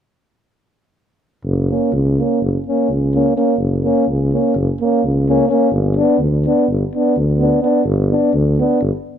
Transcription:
1.45 F#1
1.70 A#3 C#4
1.92 C#2
2.18 A#3 C#4
2.41 F#1
2.67 A#3 C#4
2.89 C#2
3.15 A#3 C#4
3.36 A#3 C#4
3.58 F#1
3.84 A#3 C#4
4.08 C#2
4.33 A#3 C#4
4.55 F#1
4.81 A#3 C#4
5.04 C#2
5.28 A#3 C#4
5.48 A#3 C#4
5.71 G1
5.97 B3 D4
6.19 D2
6.47 B3 D4
6.68 G1
6.94 B3 D4
7.16 D2
7.38 B3 D4
7.62 B3 D4
7.84 G1
8.11 B3 D4
8.34 D2
8.58 B3 D4
8.81 G1

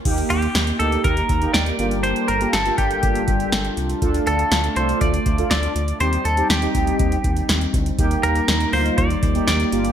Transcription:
0.05 D#2 A#3 D#4 G4, kick, closed hi-hat, crash
0.18 closed hi-hat
0.30 D#2 G4, closed hi-hat
0.42 closed hi-hat
0.55 D#2, snare, closed hi-hat
0.67 closed hi-hat
0.79 D2 A#3 D#4 G4 A4, closed hi-hat
0.92 closed hi-hat
1.04 D#2 A#4, kick, closed hi-hat
1.17 closed hi-hat
1.29 D#2, kick, closed hi-hat
1.42 A#3 D#4 G4, closed hi-hat
1.54 D#2 D5, snare, closed hi-hat
1.66 closed hi-hat
1.79 G1 G3 A#3 D4 F4 G4 A4 A#4, closed hi-hat
1.91 closed hi-hat
2.03 C5, closed hi-hat
2.16 closed hi-hat
2.28 G1 A#4, closed hi-hat
2.41 A#3 F4 G4, closed hi-hat
2.53 G1 A4, snare, closed hi-hat
2.66 A#3 F4 G4, closed hi-hat
2.78 G1 G4, kick, closed hi-hat
2.91 closed hi-hat
3.03 G1, kick, closed hi-hat
3.15 closed hi-hat
3.28 G1, kick, closed hi-hat
3.40 closed hi-hat
3.52 G1, snare, closed hi-hat
3.65 closed hi-hat
3.77 C2, closed hi-hat
3.90 closed hi-hat
4.02 D2 A3 D4 F4 A4, kick, closed hi-hat
4.14 closed hi-hat
4.27 D2 A4, closed hi-hat
4.39 closed hi-hat
4.51 D2, snare, closed hi-hat
4.64 closed hi-hat
4.76 C2 D4 F4 A4 C5, closed hi-hat
4.89 closed hi-hat
5.01 D2 D5, kick, closed hi-hat
5.14 closed hi-hat
5.26 D2, kick, closed hi-hat
5.38 D4 F4 A4, closed hi-hat
5.51 D2 D5, snare, closed hi-hat
5.63 closed hi-hat
5.75 D2, closed hi-hat
5.88 closed hi-hat
6.00 D#2 G3 C4 D#4 G4 C5, closed hi-hat
6.13 closed hi-hat
6.25 D#2 A4, closed hi-hat
6.37 C4 D#4 G4, closed hi-hat
6.50 D#2 G4, snare, closed hi-hat
6.62 C4 D#4 G4, closed hi-hat
6.75 D2, kick, closed hi-hat
6.87 closed hi-hat
6.99 D#2, kick, closed hi-hat
7.12 closed hi-hat
7.24 D#2, kick, closed hi-hat
7.37 closed hi-hat
7.49 D#2, snare, closed hi-hat
7.61 closed hi-hat
7.74 D2, kick, closed hi-hat
7.86 closed hi-hat
7.99 D#2 A#3 D#4 G4, kick, closed hi-hat
8.11 closed hi-hat
8.23 D#2 A#4, closed hi-hat
8.35 closed hi-hat
8.48 D#2, snare, closed hi-hat
8.60 closed hi-hat
8.73 D2 A#3 D#4 F4 C5, open hi-hat
8.86 closed hi-hat
8.98 D#2 D5, kick, closed hi-hat
9.10 closed hi-hat
9.23 D#2, kick, closed hi-hat
9.35 A#3 D#4 G4, closed hi-hat
9.47 D#2 D5, snare, closed hi-hat
9.60 closed hi-hat
9.72 G1 A#3 D4 F4 G4 A4 A#4, closed hi-hat
9.85 closed hi-hat

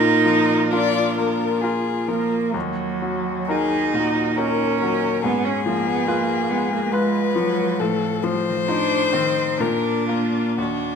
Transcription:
Already playing: A#2 D#4 F4 A#4
0.26 F3
0.71 D4 F4 A#4 D5
1.18 A#3 A#4
1.61 F4 G#4 A#4
2.08 F3 A#3 A#4
2.54 D#2 F#3
3.02 F#3
3.49 D#4 F#4 G#4 A#4
3.94 A#2 F#4
4.37 C#4 D#4 F#4 A#4
4.81 F#3 A#4
5.23 G#2 B3 G#4
5.45 C#4
5.65 F3 A#3
5.87 B3
6.07 A#3 F4 B4
6.50 G#3 B3
6.73 A#3
6.86 A#3
6.92 G#3 F4 B4
7.36 F3 F#3
7.79 A2 F3 A4
8.24 F3 C5
8.33 G3
8.41 F3
8.49 D#3
8.57 F3
8.66 D4 D#4 F4 C5
9.13 D#3 C4
9.58 A#2 D4 F4 A#4
10.09 A#3 F4 A#4
10.57 D#2 D4 F#4

